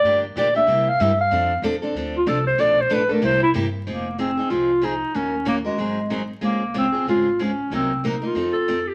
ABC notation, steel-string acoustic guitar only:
X:1
M:4/4
L:1/8
Q:"Swing" 1/4=188
K:C
V:1 name="Steel-string acoustic guitar"
[D,F,_B,DG] z [D,F,B,DG] [B,DG] [C,G,B,EG] z [C,G,B,EG] z | [F,CDA] z [F,CDA] [CDA] [F,CDA] z [F,CDA] z | [B,,F,A,DA] z [B,,F,A,DA] [A,DA] [C,G,_B,EG] z [C,G,B,EG] z | [K:Fm] [F,CEA] z [F,CEA] [CEA] [F,CEA] z [F,CEA] z |
[E,B,D_GB] z [E,B,DGB] [DGB] [E,_G,CEA] z [E,G,CEA] z | [D,A,CFA] z [D,A,CFA] [CFA] [D,A,CFA] z [D,A,CFA] z | [C,_G,B,EB] z [C,G,B,EB] [B,EB] [F,CE=A] z [F,CEA] z |]